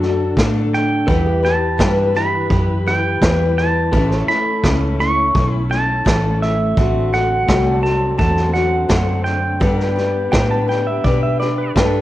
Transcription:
Already playing: F#2 D3 F#3 D4 A4 D5 A5
0.02 D4 F#4 A4, snare
0.37 A2 D3 A3 D4 A4, kick, snare, hi-hat pedal
0.73 G5, snare
1.07 E2 E3 G3 E4 G4 A4 B4 F#5, kick, snare
1.32 G4 E5
1.43 E4 G4 B4 A5, snare
1.78 G2 E3 G3 E4 G4 B4, kick, snare, hi-hat pedal
2.15 E4 G4 B4 B5, snare
2.50 F#2 E4 G4 B4, kick, snare
2.86 E4 G4 B4 G5, snare
3.21 E2 E3 G3 E4 G4 B4, kick, snare, hi-hat pedal
3.58 A5, snare
3.92 A1 A2 E3 A3 C#4 E4 G4 A4 B4 E5, kick, snare
4.11 snare
4.17 A4 C#5
4.28 A3 C#4 E4 A4 B5, snare
4.63 C#2 A2 E3 A3 C#4 E4 A4, kick, snare, hi-hat pedal
5.00 A3 C#4 E4 A4 C#6, snare
5.35 B1 A3 C#4 E4 A4, kick, snare
5.54 B5
5.70 A3 C#4 E4 A4 A5, snare
6.05 A1 A2 E3 A3 C#4 E4 A4, kick, snare, hi-hat pedal
6.42 E5, snare
6.76 A1 D3 F#3 A3 C4 F#4 A4, kick, snare
7.13 C4 F#4 A4 F#5, snare
7.47 C2 D3 A3 C4 F#4 A4 C#5 G5, kick, snare, hi-hat pedal
7.70 D5
7.76 A5
7.82 C4 F#4 A4 A5, snare
8.18 E2 A3 C4 F#4 A4 A5, kick, snare
8.37 snare
8.53 C4 F#4 A4 F#5, snare
8.89 F#2 D3 A3 C4 A4, kick, snare, hi-hat pedal
9.24 G5, snare
9.60 G2 G3 B3 D4 G4 A4 B4 D5 F#5, kick, snare
9.80 G5, snare
9.86 B4
9.96 D4 G4 B4, snare
10.31 A2 G3 D4 G4 B4 G5, kick, snare, hi-hat pedal
10.51 A5
10.68 D4 G4 B4 G5, snare
10.87 E5
11.04 B2 G3 D4 G4 B4 D5, kick, snare
11.23 E5
11.39 D4 G4 B4 D5, snare
11.58 B4
11.76 G2 G3 D4 G4 A4 B4, kick, snare, hi-hat pedal

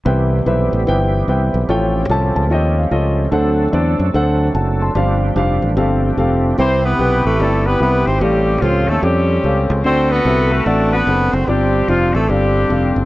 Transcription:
0.05 C2 C3 E3 G3 B3 C4 E4 G4 B4 C5 G5
0.46 B1 E4 B4 C5 E5
0.73 A1
0.87 G1 E4 B4 C5 G5
1.28 C2 E4 B4 C5 G5
1.54 B1
1.68 A1 A2 F3 A3 C#4 F4 A4 C#5 G5
2.09 C2 F4 A4 C#5 A5
2.36 C#2 A5
2.50 D#2 F4 A4 C#5 D#5 G5
2.78 F5
2.91 C#2 F4 A4 C#5 D#5
3.31 D2 D3 F#3 D4 A4 C5 F#5
3.73 E2 D4 A4 C5 D5
3.99 F#2
4.14 D2 D4 A4 C5 F#5
4.55 F#1 F#5 A5
4.82 A5 C6
4.95 G1 G2 F3 G3 C4 D4 G4 C5 F5
5.36 F1 D4 G4 C5 F5
5.62 A1
5.77 G1 G2 F3 A3 C4 G4 A4 F5
6.17 F1 C4 G4 A4 F5
6.58 C2 C3 C4 E4 G4 B4 C5 E5
6.84 B3 E4 G4 B4
6.99 B1 C4 G4 B4 G5
7.25 A1 A3
7.39 G1 C4 E4 G4 A4 B4 D5
7.66 B3 E4 G4 B4
7.80 C2 B3 C4 G4 B4 E5
8.06 G#1 C4 C5
8.20 A1 A2 G3 C4 C#4 G4 A4 F5
8.61 C#2 F3 C#4 F4 G4 A4 F5
8.88 D#2 A3 A4
9.02 F2 G3 C4 C#4 G4 A4 G5
9.44 C#2 C#4 G4 A4 F5
9.70 C#2
9.84 D2 D3 C4 F#4 A4 C5 D5
10.10 B3 F#4 B4
10.25 C2 C4 F#4 A4 E5
10.53 A3
10.65 A1 C4 D4 F#4 A4 D5
10.91 B3 F#4 B4
11.07 F#1 C4 F#4 A4 C5
11.32 F#1 C4 C5
11.47 G1 G2 G3 C4 D4 F4 G4 D5
11.88 F1 F3 C4 F4 G4 D5
12.13 A1 A3 A4
12.28 G1 G2 G3 C4 D4 G4 A4 F5
12.69 F1 C4 G4 A4 F5
12.96 F#1

